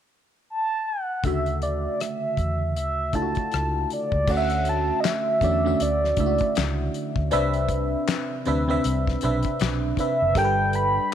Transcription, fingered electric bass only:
1.24 1.86 D2 medium
2.38 2.78 E2 medium
2.78 3.14 D2 medium
3.14 3.32 C#2 medium
3.54 3.84 C#2 medium
4.13 4.25 C#2 medium
4.29 4.90 D2 loud
5.42 5.73 E2 medium
5.81 6.11 D2 medium
6.18 6.36 C#2 medium
6.57 6.87 C#2 medium
7.17 7.29 D2 medium
7.33 7.94 C2 loud
8.47 8.77 D2 medium
8.85 9.15 C2 medium
9.23 9.41 B1 loud
9.61 9.91 B1 medium
10.22 10.34 F#1 medium
10.37 10.97 G1 loud

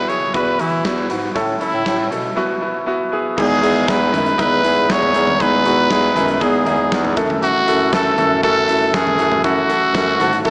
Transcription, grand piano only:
0.00 1.37 E3 soft
0.00 0.08 B3 medium
0.00 0.09 E4 medium
0.00 0.35 F#4 medium
0.08 0.27 B3 medium
0.08 0.28 E4 medium
0.08 0.28 G#4 medium
0.33 0.52 B3 medium
0.33 0.53 E4 medium
0.33 0.53 F#4 medium
0.59 0.78 B3 medium
0.59 0.78 E4 medium
0.59 0.78 F#4 medium
0.84 1.03 B3 medium
0.84 1.03 E4 medium
0.84 1.04 F#4 medium
1.09 1.28 B3 medium
1.09 1.29 E4 soft
1.09 1.29 F#4 medium
1.35 2.07 A2 medium
1.35 1.54 C#4 medium
1.35 1.54 E4 medium
1.35 1.54 A4 medium
1.60 1.79 C#4 medium
1.60 1.79 E4 medium
1.60 1.80 A4 medium
1.85 2.04 C#4 medium
1.85 2.05 E4 medium
1.85 2.05 A4 medium
2.11 2.30 C#4 medium
2.11 2.30 E4 medium
2.11 2.30 A4 medium
2.36 3.09 B2 medium
2.36 2.55 B3 medium
2.36 2.55 E4 medium
2.36 2.56 F#4 loud
2.61 2.80 B3 medium
2.61 2.80 E4 medium
2.61 2.81 F#4 medium
2.86 3.05 B3 medium
2.86 3.06 E4 medium
2.86 3.06 F#4 medium
3.12 3.31 B3 medium
3.12 3.31 E4 medium
3.12 3.31 G#4 medium
3.37 4.10 D#3 medium
3.37 3.56 D#4 medium
3.37 3.56 E4 medium
3.37 3.57 G#4 medium
3.62 3.81 D#4 medium
3.62 3.81 E4 medium
3.62 3.82 G#4 medium
3.87 4.06 D#4 medium
3.87 4.07 E4 medium
3.87 4.07 G#4 medium
4.12 4.32 D#4 medium
4.12 4.32 E4 medium
4.12 4.32 B4 medium
4.38 4.57 D#4 loud
4.38 4.57 E4 medium
4.38 4.58 B4 loud
4.64 4.82 D#4 medium
4.64 4.83 E4 medium
4.64 4.83 G#4 medium
4.89 5.08 D#4 medium
4.89 5.08 E4 medium
4.89 5.09 G#4 medium
5.14 5.33 D#4 medium
5.14 5.33 E4 medium
5.14 5.34 G#4 medium
5.39 6.12 D#3 medium
5.39 5.58 D#4 medium
5.39 5.59 E4 medium
5.39 5.59 G#4 medium
5.65 5.84 D#4 medium
5.65 5.84 E4 medium
5.65 5.84 F#4 medium
5.89 6.09 D#4 medium
5.89 6.09 E4 medium
5.89 6.09 G#4 medium
6.15 6.34 D#4 medium
6.15 6.34 E4 medium
6.15 6.35 G#4 medium
6.40 6.59 D#4 loud
6.40 6.60 E4 medium
6.40 6.60 G#4 loud
6.66 6.85 D#4 medium
6.66 6.85 E4 medium
6.66 6.85 G#4 medium
6.91 7.10 D#4 medium
6.91 7.10 E4 medium
6.91 7.11 G#4 medium
7.16 7.57 E4 medium
7.16 7.57 F#4 medium
7.16 7.58 A4 loud
7.67 7.86 E4 medium
7.67 7.86 F#4 medium
7.67 7.86 A4 medium
7.92 8.11 E4 medium
7.92 8.11 F#4 medium
7.92 8.12 A4 medium
8.17 8.36 E4 medium
8.17 8.37 F#4 medium
8.17 8.37 A4 medium
8.43 8.62 E4 medium
8.43 8.62 F#4 medium
8.43 8.62 A4 loud
8.68 8.87 E4 medium
8.68 8.87 F#4 medium
8.68 8.87 A4 medium
8.93 9.12 E4 medium
8.93 9.12 F#4 medium
8.93 9.13 A4 medium
9.18 9.37 E4 medium
9.18 9.38 F#4 medium
9.18 9.38 A4 medium
9.44 9.63 E4 medium
9.44 9.63 F#4 medium
9.44 9.63 A4 medium
9.69 9.88 E4 medium
9.69 9.88 F#4 medium
9.69 9.88 A4 medium
9.94 10.13 E4 medium
9.94 10.13 F#4 medium
9.94 10.14 A4 medium
10.19 10.38 E4 medium
10.19 10.39 F#4 medium
10.19 10.39 A4 medium
10.45 10.50 E4 medium
10.45 10.50 F#4 medium
10.45 10.50 A4 loud

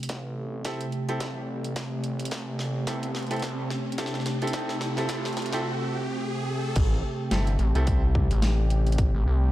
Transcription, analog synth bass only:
0.09 0.63 A1 medium
1.21 1.74 A1 loud
1.76 2.30 A1 medium
2.32 2.85 A1 loud
2.87 3.13 G1 loud
3.14 3.41 A1 loud
3.43 3.69 C2 loud
4.54 5.07 A1 loud
5.09 5.63 C2 loud
6.76 7.02 A1 loud
7.32 7.58 G1 loud
7.59 7.73 A1 loud
7.75 8.28 C2 loud
8.31 9.12 A1 loud
9.14 9.24 A1 loud
9.26 9.52 C2 medium

